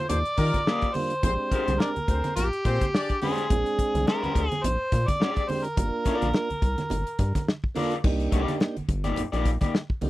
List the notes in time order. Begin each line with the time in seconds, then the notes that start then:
0.09 D#2 F4 A4 C5 D5, closed hi-hat, low conga
0.25 closed hi-hat
0.37 D#3 F4 G4 A#4, kick, snare, closed hi-hat, muted conga
0.54 kick, snare, closed hi-hat, high conga
0.67 A#3 F4 G4 A#4 D#5, snare
0.82 kick, closed hi-hat
0.94 G3 A#3 D4 F4 C5, open hi-hat, high conga
1.10 closed hi-hat
1.22 A#1 G#3 C4 D4 F#4 G#4 C5, kick, closed hi-hat, low conga
1.31 G4
1.51 G#3 D4 F4 G4 A#4 C5, kick, closed hi-hat, muted conga
1.68 C2, snare, closed hi-hat, high conga
1.79 D4 G#4 A#4 D5, snare, muted conga
1.96 D2, closed hi-hat, high conga
2.08 D2 C4 G#4 C5, kick, closed hi-hat, muted conga
2.24 snare, closed hi-hat, high conga
2.36 A#1 F4 G4 A#4, closed hi-hat, muted conga, low conga
2.53 closed hi-hat
2.65 A#2 C4 G#4 C5, kick, snare, closed hi-hat
2.81 kick, snare, closed hi-hat, high conga
2.94 D4 G#4 D5, snare
3.09 kick, closed hi-hat
3.21 G#3 C4 D4 G4 G#4 C5, open hi-hat, high conga
3.38 closed hi-hat
3.50 A#1 G#3 C4 D4 G#4, kick, closed hi-hat, muted conga, low conga
3.66 closed hi-hat
3.79 kick, closed hi-hat
3.95 C2, snare, closed hi-hat, high conga
4.07 G#3 D4 G4 A#4 C5, snare, muted conga
4.22 D2 G#3 D4 G4 C5, closed hi-hat, high conga
4.35 D2, kick, closed hi-hat, muted conga
4.48 G#4, closed hi-hat, high conga
4.53 snare
4.64 A#1 C5, closed hi-hat, muted conga, low conga
4.92 A#2, kick, snare, closed hi-hat, muted conga
5.08 D5, kick, snare, closed hi-hat, high conga
5.20 G#3 D4 G4 D5, snare, muted conga
5.36 kick, closed hi-hat
5.48 G#3 C4 D4 G4 C5, open hi-hat, muted conga, high conga
5.64 A#4, closed hi-hat
5.76 G1 A#3 D4 F4 A#4, kick, closed hi-hat, low conga
6.05 D4 F4 A#4 D5, kick, closed hi-hat, muted conga
6.22 A#1, snare, closed hi-hat, high conga
6.34 snare, muted conga
6.50 C2, closed hi-hat, high conga
6.62 C2, kick, closed hi-hat, muted conga
6.78 snare, closed hi-hat, high conga
6.90 G1, closed hi-hat, low conga
7.07 closed hi-hat
7.19 G2, kick, snare, closed hi-hat, muted conga
7.35 kick, snare, closed hi-hat, high conga
7.48 snare
7.64 kick
7.75 A#3 D4 F4 A4 A#4 D5, open hi-hat, muted conga, high conga
7.92 snare, closed hi-hat
8.04 C2 A#3 D4 D#4 G4, kick, crash, low conga
8.20 closed hi-hat
8.31 C2 A#3 D#4 G4 D5, kick, closed hi-hat
8.48 snare, closed hi-hat, high conga
8.60 snare, muted conga
8.77 G1, closed hi-hat, high conga
8.89 G1, kick, closed hi-hat, muted conga
9.04 A#3 D#4 G4 D5, snare, closed hi-hat, high conga
9.16 A#1, closed hi-hat, muted conga, low conga
9.32 A#1 A#3 D#4 G4 D5, closed hi-hat
9.45 kick, snare, closed hi-hat
9.61 A#3 D#4 G4 D5, kick, snare, closed hi-hat, high conga
9.75 snare
9.90 kick
10.01 C2 A#3 D4 D#4 G4, open hi-hat, muted conga, high conga